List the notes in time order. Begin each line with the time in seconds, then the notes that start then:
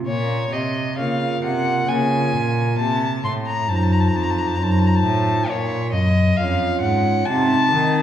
0.06 A#2 C#5
0.51 C3 D#5
0.96 C#3 A#3 F4 A#4 F5
1.41 C3 F#5
1.87 C#3 A#3 F4 A#4 G#5
2.33 A#2
2.78 C3 A5
3.24 A2 C6
3.47 A#5
3.68 F#2 D#4 F4 C5 A5
3.76 A#5
3.84 A5
3.92 A#5
4.00 A5
4.08 A#5
4.13 F2 A5
4.23 A#5
4.30 A5
4.39 A#5
4.47 A5
4.55 F#2 A#5
4.59 F#2 D#4 F4 C5
4.63 A5
4.71 A#5
4.79 A5
4.87 A#5
4.95 A5
5.03 A2
5.47 A#2 C#5
5.93 F#2 D#5
6.37 F2 C#4 F4 C#5 F5
6.81 G#2 F#5
7.26 C3 C4 D#4 D#5 A5
7.72 D#3